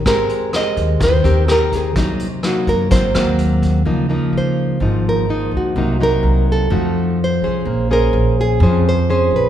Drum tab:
HH |xxxxxxxx|xxxxxxxx|--------|--------|
SD |r-r---r-|--r--r--|--------|--------|
BD |o--oo--o|o--oo--o|--------|--------|

HH |--------|
SD |--------|
BD |--------|